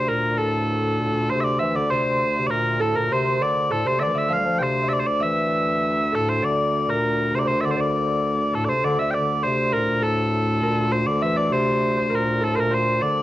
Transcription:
Already playing: D2 C3 A4 C5 D5 E5
0.08 A#2 A#4
0.38 A2 A4
0.99 A#2
1.07 A2
1.13 A#2
1.30 C3 C5
1.40 D5 E5
1.59 E3 E5
1.67 E3
1.75 D3 D5
1.90 C3 C5
2.37 C3
2.47 A#2 A#4 D5
2.80 A2 A4
2.95 A#2 A#4
3.11 C3 C5
3.42 D3 D5
3.70 A2 A4
3.86 C3 C5
4.00 D2 D3 D5 E5
4.07 E3
4.13 D3 E5
4.18 E5
4.29 F3 F5
4.33 F5
4.38 G3
4.45 F3
4.59 C3 C5 G5
4.63 C5
4.83 E5
4.89 D5 E5
4.93 D5
5.00 C5
5.07 D5
5.20 E3 E5
6.12 A2 A4
6.29 C5
6.42 D3 D5
6.88 A#2 A#4
7.33 C3 C5
7.39 D5
7.45 C3 C5
7.61 D3 D5 E5
7.65 D5
7.71 C5
7.77 D3 D5
7.81 D5
8.53 A2 A4
8.65 C5 D5
8.69 C3 C5
8.82 D2 D3 D5
8.99 E5
9.11 D5 G5
9.16 D3
9.43 C3 C5
9.72 A#2 A#4
9.82 A2
9.89 A#2
10.02 A2 A4
10.62 A#2 A#4
10.92 C5
11.07 D3 D5
11.21 E3 E5
11.36 D5
11.51 C3 C5
11.97 C5
12.03 C3
12.10 A#2 A#4
12.15 A#4
12.41 A2 A4
12.55 A#2 A#4 C5
12.60 A#4
12.71 C5
13.01 D3 D5

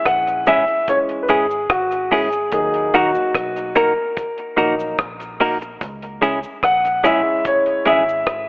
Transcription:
Already playing: E3 G#3 C#4
0.05 A#1 F#5, kick, cross-stick, closed hi-hat
0.27 closed hi-hat, cabasa
0.47 G#3 C#4 E4 G#4 E5, closed hi-hat, cabasa
0.68 closed hi-hat
0.88 E3 G#3 C#4 C#5, kick, closed hi-hat, cabasa
1.09 closed hi-hat
1.23 B4
1.28 G#1 G#3 C#4 E4 G#4, closed hi-hat, cabasa
1.51 cabasa
1.70 G#1 F#4, kick, cross-stick, closed hi-hat
1.91 closed hi-hat, cabasa
2.11 G#3 C#4 E4 G#4, open hi-hat
2.32 muted clean electric guitar stroke, closed hi-hat, cabasa
2.52 D#2 F#3 A#3 D#4 G#4, kick, closed hi-hat, cabasa
2.74 closed hi-hat
2.94 D#2 A#3 D#4 F#4 A#4, closed hi-hat, cabasa
3.15 cabasa
3.35 B1, kick, cross-stick, closed hi-hat
3.56 closed hi-hat, cabasa
3.76 A#3 D#4 F#4 A#4, closed hi-hat, cabasa
4.17 kick, closed hi-hat, cabasa
4.38 closed hi-hat
4.57 A#1 F#3 A#3 D#4 F#4 A#4, closed hi-hat, cabasa
4.80 cabasa
4.99 A#1, kick, cross-stick, closed hi-hat
5.20 closed hi-hat, cabasa
5.40 A#3 D#4 F#4 A#4, open hi-hat
5.62 muted clean electric guitar stroke, closed hi-hat, cabasa
5.81 C#2, kick, closed hi-hat, cabasa
6.02 closed hi-hat
6.22 C#2 G#3 C#4 E4 G#4, closed hi-hat, cabasa
6.43 cabasa
6.63 A#1 F#5, kick, cross-stick, closed hi-hat
6.85 closed hi-hat, cabasa
7.04 G#3 C#4 E4 G#4 E5, closed hi-hat, cabasa
7.45 C#5, kick, closed hi-hat, cabasa
7.66 closed hi-hat
7.85 G#1 G#3 C#4 E4 G#4 E5, closed hi-hat, cabasa
8.09 cabasa
8.27 G#1, kick, cross-stick, closed hi-hat

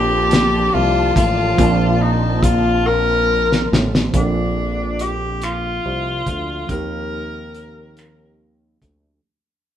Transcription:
Already playing: A#1 F3 A#3 C4 D4 G4 A4 D5 A5 C6
0.31 snare, closed hi-hat
0.74 C2 F4
1.16 A1 F4, kick, closed hi-hat
1.55 F3 A#3, kick
1.59 A#1 C4 D5, closed hi-hat
1.63 A5
2.02 D#4
2.43 F4, kick, closed hi-hat
2.87 A#4
3.52 snare
3.72 A1, snare
3.95 snare
4.10 F3 A#3, kick, closed hi-hat
4.14 A#1 C4 D4
4.18 A4
4.99 G4, closed hi-hat
5.42 F4, finger snap, closed hi-hat
5.85 C2
6.26 D2, kick, closed hi-hat
6.65 F3 A#3
6.69 D#2 C4 D#4 A#4, kick, closed hi-hat
6.73 G4
7.54 closed hi-hat
7.97 finger snap, closed hi-hat
8.82 D2, kick, closed hi-hat

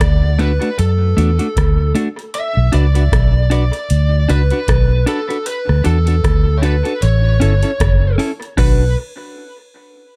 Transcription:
Already playing: D5
0.00 D2, kick, cross-stick, closed hi-hat
0.39 A3 D4 F#4 B4, closed hi-hat
0.61 A3 D4 F#4, closed hi-hat
0.79 F#2 A4, closed hi-hat
1.17 E2 A3 D4 F#4, closed hi-hat
1.39 A3 D4 F#4, closed hi-hat
1.57 D2, kick, cross-stick, closed hi-hat
1.95 A3 D4 F#4, closed hi-hat
2.19 closed hi-hat
2.34 E5, closed hi-hat
2.57 B1
2.72 C#2 D4 F#4 B4 D5, closed hi-hat
2.95 D4 F#4 B4, closed hi-hat
3.12 B1, kick, cross-stick, closed hi-hat
3.50 D4 F#4 B4 D5, closed hi-hat
3.73 closed hi-hat
3.90 D2, closed hi-hat
4.29 C#2 D4 F#4 B4, closed hi-hat
4.50 D4 F#4 B4, closed hi-hat
4.68 B1, kick, cross-stick, closed hi-hat
5.06 D4 F#4 A4 B4, closed hi-hat
5.29 D4 F#4 B4, closed hi-hat
5.46 B4, closed hi-hat
5.69 D2, cross-stick
5.84 E2 D4 F#4 A4, closed hi-hat
6.06 D4 F#4 A4, closed hi-hat
6.24 D2, kick, cross-stick, closed hi-hat
6.58 C#5
6.62 D4 F#4 A4 B4, closed hi-hat
6.84 D4 F#4 A4, closed hi-hat
7.02 A1 C#5, closed hi-hat
7.40 G1 C#4 E4 A4, closed hi-hat
7.63 C#4 E4 A4, closed hi-hat
7.80 F#1, kick, cross-stick, closed hi-hat
8.18 C#4 E4 A4, open hi-hat
8.42 closed hi-hat
8.57 B1 D4 F#4 B4, kick, crash

